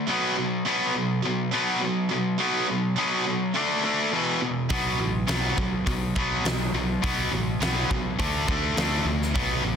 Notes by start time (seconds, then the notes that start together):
0.09 B2 F#3 B3
0.37 B2 F#3
0.66 B2 F#3 B3
0.97 B2 F#3
1.25 B2 F#3
1.53 B2 F#3 B3
1.83 B2 F#3
2.11 B2 F#3
2.40 B2 F#3 B3
2.69 B2 F#3
2.98 B2 F#3 B3
3.26 B2 F#3
3.55 D3 A3 D4
3.84 D3 A3 D4
4.12 E2 B2 E3
4.41 E2 B2
4.70 B1 B2 F#3 B3, kick, open hi-hat
4.99 A1 B2 F#3
5.27 B1 B2 F#3 B3, snare, open hi-hat
5.57 B1 B2 F#3, kick
5.87 B1 B2 F#3, kick, open hi-hat
6.16 B1 B2 F#3 B3, kick
6.44 B1 B2 F#3, snare, open hi-hat
6.73 B1 B2 F#3
7.02 B1 B2 F#3 B3, kick, open hi-hat
7.31 A1 B2 F#3
7.60 B1 B2 F#3 B3, snare, open hi-hat
7.90 B1 B2 F#3, kick
8.19 D2 D3 A3 D4, kick, open hi-hat
8.47 D2 D3 A3 D4, kick
8.76 D2 D3 A3 D4, snare, open hi-hat
9.05 D2 D3 A3
9.22 snare
9.35 B1 B2 F#3 B3, kick, open hi-hat
9.64 A1 B2 F#3